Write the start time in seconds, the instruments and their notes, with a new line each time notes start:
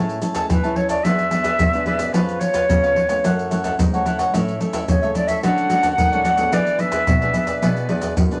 Already playing: nylon-string guitar A2 A3 C#4 E4 G#4, cavaquinho G#4 C#5 E5 A5
0.09 pandeiro, maracas
0.21 nylon-string guitar C#4 E4 G#4, cavaquinho G#4 C#5 E5 A5, pandeiro, maracas
0.35 cavaquinho G#4 C#5 E5 A5, pandeiro, maracas, surdo
0.49 nylon-string guitar E3, flute B4, pandeiro, maracas, surdo
0.63 nylon-string guitar C#4 E4 G#4, cavaquinho C#5 E5 A5, pandeiro, maracas
0.76 cavaquinho G#4 C#5 E5 A5, flute C#5, pandeiro
0.89 cavaquinho C#5 E5 A5, flute D5, pandeiro, maracas, surdo
1.04 nylon-string guitar E2 E3 B3 D4 G#4, cavaquinho E4 G#4 B4 D5, flute E5, pandeiro, maracas, surdo
1.19 pandeiro, maracas
1.31 nylon-string guitar B3 D4 G#4, cavaquinho E4 G#4 B4 D5, pandeiro, maracas
1.44 cavaquinho E4 G#4 B4 D5, pandeiro, maracas, surdo
1.59 nylon-string guitar E2 B2, pandeiro, maracas, surdo
1.73 nylon-string guitar B3 D4 G#4, cavaquinho G#4 B4 D5, pandeiro, maracas
1.86 cavaquinho E4 G#4 B4 D5, pandeiro
1.99 nylon-string guitar B3 C#4 G#4, cavaquinho G#4 B4 D5, pandeiro, maracas, surdo
2.13 nylon-string guitar F2 F3, cavaquinho F4 B4 C#5 F5, flute B4, pandeiro, maracas, surdo
2.29 pandeiro, maracas
2.40 cavaquinho F4 B4 C#5 F5, flute C#5, pandeiro, maracas
2.54 cavaquinho F4 B4 C#5 F5, pandeiro, maracas, surdo
2.69 nylon-string guitar C#3 F3 B3 C#4 G#4, pandeiro, maracas, surdo
2.83 cavaquinho B4 C#5 F5, pandeiro, maracas
2.96 cavaquinho F4 B4 C#5 F5, pandeiro, surdo
3.09 nylon-string guitar E3 A3 C#4, cavaquinho B4 C#5 F5, pandeiro, maracas, surdo
3.24 nylon-string guitar F#2, cavaquinho E4 A4 C#5 F#5, pandeiro, maracas, surdo
3.39 pandeiro, maracas
3.51 nylon-string guitar E3 A3 C#4, cavaquinho E4 A4 C#5 F#5, pandeiro, maracas
3.64 cavaquinho E4 A4 C#5 F#5, pandeiro, maracas, surdo
3.79 nylon-string guitar G#2 C#3, pandeiro, maracas, surdo
3.93 nylon-string guitar E3 A3 C#4, cavaquinho A4 C#5 F#5, pandeiro, maracas
4.05 cavaquinho E4 A4 C#5 F#5, pandeiro, maracas
4.18 cavaquinho A4 C#5 F#5, pandeiro, maracas, surdo
4.33 nylon-string guitar A2 E3 A3 C#4, cavaquinho E4 A4 C#5 E5, pandeiro, maracas, surdo
4.48 pandeiro, maracas
4.60 nylon-string guitar E3 A3 C#4, cavaquinho E4 A4 C#5 E5, pandeiro, maracas
4.73 cavaquinho E4 A4 C#5 E5, pandeiro, maracas, surdo
4.88 nylon-string guitar C#3 E3, flute C#5, pandeiro, maracas, surdo
5.02 nylon-string guitar E3 A3 C#4, cavaquinho A4 C#5 E5, pandeiro, maracas
5.14 cavaquinho E4 A4 C#5 E5, flute D5, pandeiro, maracas
5.27 cavaquinho A4 C#5 E5, flute E5, pandeiro, maracas, surdo
5.43 nylon-string guitar D3 F#3 A3 C#4, cavaquinho F#4 A4 C#5 D5, flute F#5, pandeiro, maracas, surdo
5.58 pandeiro, maracas
5.69 nylon-string guitar F#3 A3 C#4, cavaquinho F#4 A4 C#5 D5, pandeiro, maracas
5.82 cavaquinho F#4 A4 C#5 D5, pandeiro, maracas, surdo
5.98 nylon-string guitar A2 D#3, pandeiro, maracas, surdo
6.12 nylon-string guitar F#3 A3 C#4, cavaquinho A4 C#5 D5, pandeiro, maracas
6.24 cavaquinho F#4 A4 C#5 D5, pandeiro, maracas
6.36 nylon-string guitar B3 D4 G#4, cavaquinho A4 C#5 D5, pandeiro, maracas, surdo
6.52 nylon-string guitar E3, cavaquinho E4 G#4 B4 D5, flute D5, pandeiro, maracas, surdo
6.67 pandeiro, maracas
6.78 nylon-string guitar B3 D4 G#4, cavaquinho E4 G#4 B4 D5, flute E5, pandeiro, maracas
6.92 cavaquinho E4 G#4 B4 D5, pandeiro, maracas, surdo
7.07 nylon-string guitar B2, pandeiro, maracas, surdo
7.21 nylon-string guitar B3 D4 G#4, cavaquinho G#4 B4 D5, pandeiro, maracas
7.34 cavaquinho E4 G#4 B4 D5, pandeiro, maracas, surdo
7.47 cavaquinho G#4 B4 D5, pandeiro, maracas, surdo
7.62 nylon-string guitar B2 E3 B3 D4 G#4, cavaquinho E4 G#4 B4 D5, pandeiro, maracas, surdo
7.77 pandeiro, maracas
7.88 nylon-string guitar E2 B3 D4 G#4, cavaquinho E4 G#4 B4 D5, pandeiro
8.02 cavaquinho E4 G#4 B4 D5, pandeiro, maracas, surdo
8.17 nylon-string guitar F#2 B2, pandeiro, maracas, surdo
8.31 nylon-string guitar B3 D4 G#4, cavaquinho G#4 B4 D5, pandeiro, maracas